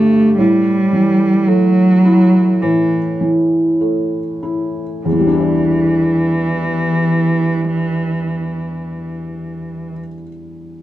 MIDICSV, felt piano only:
0, 0, Header, 1, 2, 480
1, 0, Start_track
1, 0, Key_signature, 1, "minor"
1, 0, Tempo, 1088929
1, 170, Time_signature, 4, 2, 24, 8
1, 652, Tempo, 1162791
1, 1612, Tempo, 1242236
1, 4324, End_track
2, 0, Start_track
2, 0, Title_t, "Felt piano"
2, 0, Program_c, 0, 0
2, 0, Control_c, 0, 64, 127
2, 0, Note_on_c, 0, 43, 74
2, 0, Note_on_c, 0, 50, 62
2, 0, Note_on_c, 0, 57, 62
2, 0, Note_on_c, 0, 67, 68
2, 75, Note_off_c, 0, 57, 0
2, 152, Note_off_c, 0, 43, 0
2, 168, Note_on_c, 0, 45, 75
2, 169, Note_off_c, 0, 67, 0
2, 178, Control_c, 0, 64, 0
2, 180, Note_off_c, 0, 50, 0
2, 261, Control_c, 0, 64, 127
2, 409, Note_on_c, 0, 52, 59
2, 651, Note_on_c, 0, 57, 63
2, 791, Note_off_c, 0, 52, 0
2, 889, Note_on_c, 0, 64, 67
2, 1026, Note_off_c, 0, 57, 0
2, 1105, Note_off_c, 0, 45, 0
2, 1126, Note_on_c, 0, 45, 64
2, 1269, Note_off_c, 0, 64, 0
2, 1366, Note_on_c, 0, 52, 53
2, 1614, Note_on_c, 0, 57, 53
2, 1755, Note_off_c, 0, 52, 0
2, 1852, Note_on_c, 0, 64, 57
2, 1999, Note_off_c, 0, 57, 0
2, 2081, Note_off_c, 0, 45, 0
2, 2095, Note_off_c, 0, 64, 0
2, 2095, Note_on_c, 0, 40, 63
2, 2104, Control_c, 0, 64, 0
2, 2121, Note_on_c, 0, 52, 61
2, 2149, Note_on_c, 0, 55, 65
2, 2171, Control_c, 0, 64, 127
2, 2176, Note_on_c, 0, 62, 59
2, 2203, Note_on_c, 0, 64, 60
2, 2230, Note_on_c, 0, 74, 58
2, 3977, Note_off_c, 0, 40, 0
2, 4003, Note_off_c, 0, 52, 0
2, 4031, Note_off_c, 0, 55, 0
2, 4059, Note_off_c, 0, 62, 0
2, 4085, Note_off_c, 0, 64, 0
2, 4113, Note_off_c, 0, 74, 0
2, 4324, End_track
0, 0, End_of_file